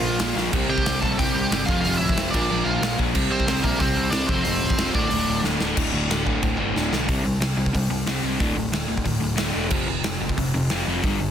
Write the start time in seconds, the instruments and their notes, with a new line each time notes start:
Already playing: overdriven electric guitar A#2 F3 A#3 F4 F5
0.03 picked electric bass A#1
0.19 picked electric bass A#1, overdriven electric guitar A#2 F3 A#3, snare, open hi-hat
0.35 picked electric bass A#1, overdriven electric guitar A#2 F3 A#3, snare
0.53 picked electric bass C2, overdriven electric guitar C3 G3 C4, kick, crash
0.69 picked electric bass C3, overdriven electric guitar G4 G5
0.78 kick
0.86 picked electric bass C2, overdriven electric guitar C3 G3 C4, snare, open hi-hat
1.01 picked electric bass A#1, overdriven electric guitar C3 G3 C4 A4 A5, kick
1.18 picked electric bass C2, overdriven electric guitar C3 G3 C4 G4 G5, kick, open hi-hat
1.35 picked electric bass C2
1.51 picked electric bass G1, overdriven electric guitar C3 G3 C4, snare, open hi-hat
1.66 picked electric bass F1, overdriven electric guitar F2 C3 F5, kick
1.70 overdriven electric guitar F3 F4
1.82 picked electric bass F1, overdriven electric guitar F3 F5, open hi-hat
1.86 overdriven electric guitar F2 C3 F4
1.97 picked electric bass D1, overdriven electric guitar E4 E5
2.09 kick
2.17 picked electric bass F1, overdriven electric guitar F2 C3 F3, snare, open hi-hat
2.31 picked electric bass A#1, overdriven electric guitar A#2 F3 D5, kick, crash
2.35 overdriven electric guitar A#3 D4
2.49 picked electric bass A#1, overdriven electric guitar A#2 F3 A#3
2.65 picked electric bass A#1, overdriven electric guitar F4 F5
2.82 picked electric bass A#1, overdriven electric guitar A#2 F3 A#3, snare, open hi-hat
2.98 picked electric bass A#1, overdriven electric guitar A#2 F3 A#3, kick
3.14 picked electric bass C2, overdriven electric guitar C3 G3 C4, kick, crash
3.31 picked electric bass C3, overdriven electric guitar C4 C5
3.40 kick
3.46 picked electric bass C2, overdriven electric guitar C3 G3 C4, snare, open hi-hat
3.63 picked electric bass A#1, overdriven electric guitar C3 G3 A#3 C4 A#4, kick
3.79 picked electric bass C2, overdriven electric guitar C3 G3 C4 C5, kick, open hi-hat
3.96 picked electric bass C2
4.10 picked electric bass C2, overdriven electric guitar C3 G3 C4 D4 D5, snare, open hi-hat
4.27 picked electric bass F1, overdriven electric guitar F2 C3 F3 C4 C5, kick
4.44 picked electric bass F1, overdriven electric guitar F2 C3 F3 C4 C5, open hi-hat
4.61 picked electric bass D1
4.70 kick
4.78 picked electric bass E1, overdriven electric guitar F2 C3 F3, snare, open hi-hat
4.94 picked electric bass D1, overdriven electric guitar D2 A2 D3 D4 D5, kick
5.10 picked electric bass D1, overdriven electric guitar D2 A2 D3, open hi-hat
5.27 picked electric bass D1
5.42 picked electric bass D1, overdriven electric guitar D2 A2 D3, snare
5.59 picked electric bass D1, overdriven electric guitar D2 A2 D3, snare
5.76 picked electric bass D1, overdriven electric guitar D2 A2 D3, kick, crash
5.93 overdriven electric guitar D2 A2 D3
6.09 picked electric bass D1, overdriven electric guitar D2 A2 D3, snare, crash
6.25 overdriven electric guitar D2 A2 D3, kick
6.41 picked electric bass D1, overdriven electric guitar D2 A2 D3, kick, crash
6.58 picked electric bass G1, overdriven electric guitar D2 A2 D3
6.75 picked electric bass D1, overdriven electric guitar D2 A2 D3, snare
6.92 picked electric bass B1, overdriven electric guitar D2 A2 D3, snare
7.08 picked electric bass C2, overdriven electric guitar C3 G3 C4, kick, open hi-hat
7.24 picked electric bass C2, overdriven electric guitar C3 G3
7.40 picked electric bass C2, overdriven electric guitar C3 G3, snare, open hi-hat
7.57 picked electric bass C2, overdriven electric guitar C3 G3
7.66 kick
7.73 picked electric bass C2, overdriven electric guitar C3 G3, kick, open hi-hat
7.90 picked electric bass C2, overdriven electric guitar C3 G3
8.06 picked electric bass C2, overdriven electric guitar C3 G3 C4, snare, open hi-hat
8.23 picked electric bass C2, overdriven electric guitar C3 G3 C4
8.40 picked electric bass D1, overdriven electric guitar D2 A2 D3, kick, open hi-hat
8.55 picked electric bass D1, overdriven electric guitar D2 A2
8.72 picked electric bass D1, overdriven electric guitar D2 A2, snare, open hi-hat
8.88 picked electric bass D1, overdriven electric guitar D2 A2
8.97 kick
9.05 picked electric bass D1, overdriven electric guitar D2 A2, kick, open hi-hat
9.20 picked electric bass D1, overdriven electric guitar D2 A2
9.36 picked electric bass D1, overdriven electric guitar D2 A2 D3, snare, open hi-hat
9.52 picked electric bass E1, overdriven electric guitar D2 A2 D3
9.69 picked electric bass F1, overdriven electric guitar F2 C3 F3, kick, crash
9.87 picked electric bass F1, overdriven electric guitar F2 C3
10.04 picked electric bass F1, overdriven electric guitar F2 C3, snare, open hi-hat
10.20 picked electric bass F1, overdriven electric guitar F2 C3
10.29 kick
10.37 picked electric bass F1, overdriven electric guitar F2 C3, kick, open hi-hat
10.54 picked electric bass F1, overdriven electric guitar F2 C3
10.70 picked electric bass F1, overdriven electric guitar F2 C3 F3, snare, open hi-hat
10.86 picked electric bass F1, overdriven electric guitar F2 C3 F3
11.03 picked electric bass G1, overdriven electric guitar G2 D3 G3, kick, open hi-hat
11.20 picked electric bass G1, overdriven electric guitar G2 D3